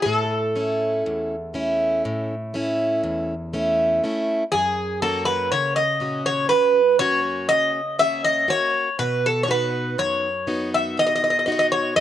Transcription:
0.02 steel-string acoustic guitar A2, bouzouki A4
0.56 steel-string acoustic guitar A3 C#4 E4
1.06 steel-string acoustic guitar E2
1.54 steel-string acoustic guitar A3 C#4 E4
2.05 steel-string acoustic guitar A2
2.54 steel-string acoustic guitar A3 C#4 E4
3.04 steel-string acoustic guitar E2
3.54 steel-string acoustic guitar A3 C#4 E4
4.04 steel-string acoustic guitar A3 C#4 E4
4.52 steel-string acoustic guitar F#2, bouzouki G#4
5.02 steel-string acoustic guitar A#3 C#4 F#4, bouzouki A4
5.25 bouzouki B4
5.52 steel-string acoustic guitar C#3, bouzouki C#5
5.76 bouzouki D#5
6.00 steel-string acoustic guitar A#2 C#4 F#4
6.26 bouzouki C#5
6.49 steel-string acoustic guitar F#2, bouzouki B4
6.99 steel-string acoustic guitar A#3 C#4 F#4, bouzouki C#5
7.49 steel-string acoustic guitar C#3, bouzouki D#5
7.99 steel-string acoustic guitar A#3 C#4 F#4, bouzouki E5
8.24 bouzouki D#5
8.48 steel-string acoustic guitar A#3 C#4 F#4, bouzouki C#5
8.99 steel-string acoustic guitar B2, bouzouki B4
9.26 bouzouki A4
9.43 bouzouki C#5
9.48 steel-string acoustic guitar B3 D#4 F#4, bouzouki B4
9.98 steel-string acoustic guitar F#2, bouzouki C#5
10.47 steel-string acoustic guitar B3 D#4 F#4
10.74 bouzouki E5
10.97 steel-string acoustic guitar B2, bouzouki D#5
11.07 bouzouki D#5
11.16 bouzouki D#5
11.24 bouzouki D#5
11.30 bouzouki D#5
11.39 bouzouki D#5
11.46 steel-string acoustic guitar B3 D#4 F#4, bouzouki D#5
11.52 bouzouki D#5
11.59 bouzouki D#5
11.72 bouzouki C#5
11.96 steel-string acoustic guitar F#2, bouzouki D#5

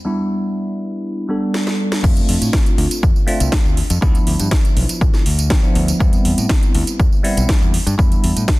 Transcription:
0.05 tine electric piano G3 B3 D4 E4
1.29 tine electric piano G3 B3 D4 A4
1.54 snare
1.67 snare
1.92 snare
2.03 fingered electric bass F2, tine electric piano A3 C4 D4 F4, kick, crash, tambourine
2.17 closed hi-hat, tambourine
2.29 fingered electric bass F2, open hi-hat
2.41 fingered electric bass A2, closed hi-hat, tambourine
2.53 kick, snare, tambourine
2.66 closed hi-hat, tambourine
2.78 fingered electric bass D2, open hi-hat
2.91 closed hi-hat, tambourine
3.03 fingered electric bass F2, kick, tambourine
3.16 tambourine
3.27 tine electric piano A3 C4 D4 F4, open hi-hat
3.40 fingered electric bass C2, closed hi-hat, tambourine
3.52 kick, snare
3.65 fingered electric bass D2, tambourine
3.77 open hi-hat
3.90 fingered electric bass F2, closed hi-hat, tambourine
4.01 fingered electric bass D2, tine electric piano F3 B3 D4 E4, kick, tambourine
4.15 closed hi-hat, tambourine
4.27 fingered electric bass D2, open hi-hat
4.40 fingered electric bass G2, closed hi-hat, tambourine
4.51 kick, snare, tambourine
4.65 closed hi-hat, tambourine
4.77 fingered electric bass B1, open hi-hat
4.89 closed hi-hat, tambourine
5.01 fingered electric bass A1, kick, tambourine
5.14 snare, tambourine
5.26 fingered electric bass D2, open hi-hat
5.39 closed hi-hat, tambourine
5.50 tine electric piano F3 B3 D4 G4, kick, snare, tambourine
5.63 tine electric piano F3 B3 D4 E4, tambourine
5.75 fingered electric bass D2, open hi-hat
5.88 closed hi-hat, tambourine
5.99 fingered electric bass E2, tine electric piano G3 B3 C4 E4, kick, tambourine
6.13 closed hi-hat, tambourine
6.25 fingered electric bass E2, open hi-hat
6.38 fingered electric bass A2, closed hi-hat, tambourine
6.49 kick, snare
6.63 closed hi-hat, tambourine
6.75 fingered electric bass D2, open hi-hat
6.87 closed hi-hat, tambourine
6.99 fingered electric bass E2, kick, tambourine
7.12 tambourine
7.24 tine electric piano G3 B3 C4 E4, open hi-hat
7.37 fingered electric bass B1, closed hi-hat, tambourine
7.49 kick, snare, tambourine
7.62 fingered electric bass E2, tambourine
7.74 open hi-hat
7.87 fingered electric bass G2, closed hi-hat, tambourine
7.98 fingered electric bass E2, tine electric piano G3 B3 D4 E4, kick, tambourine
8.12 closed hi-hat, tambourine
8.24 fingered electric bass E2, open hi-hat
8.36 fingered electric bass A2, closed hi-hat, tambourine
8.48 kick, snare, tambourine

